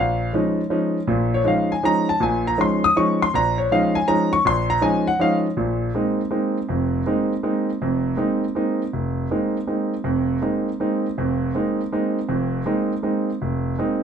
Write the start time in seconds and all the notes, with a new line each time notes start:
Already playing: A#1
0.00 F5
0.33 F3 G#3 C#4 D#4
0.70 F3 G#3 C#4 D#4
1.07 A#1 A#2
1.34 C#5
1.44 F3 G#3 C#4 D#4 F5
1.72 G#5
1.83 F3 G#3 C#4 D#4 A#5
2.09 A5
2.20 A#1 A#2 G#5
2.47 A#5
2.58 F3 G#3 C#4 D#4 C6
2.84 D#6
2.96 F3 G#3 C#4 D#4 C#6
3.22 C6
3.34 A#1 A#5
3.58 C#5
3.72 F3 G#3 C#4 D#4 F5
3.95 G#5
4.08 F3 G#3 C#4 D#4 A#5
4.33 C#6
4.45 A#1 C6
4.70 A#5
4.81 F3 G#3 C#4 D#4 G#5
5.08 F#5
5.19 F3 G#3 C#4 D#4 F5
5.57 A#1 A#2
5.95 G#3 A#3 C4 D#4
6.31 G#3 A#3 C4 D#4
6.69 F1 F2
7.06 G#3 A#3 C4 D#4
7.43 G#3 A#3 C4 D#4
7.82 F1 F2
8.17 G#3 A#3 C4 D#4
8.55 G#3 A#3 C4 D#4
8.93 F1
9.31 G#3 A#3 C4 D#4
9.67 G#3 A#3 C4 D#4
10.04 F1 F2
10.42 G#3 A#3 C4 D#4
10.80 G#3 A#3 C4 D#4
11.18 F1 F2
11.55 G#3 A#3 C4 D#4
11.92 G#3 A#3 C4 D#4
12.29 F1 F2
12.66 G#3 A#3 C4 D#4
13.03 G#3 A#3 C4 D#4
13.42 F1
13.79 G#3 A#3 C4 D#4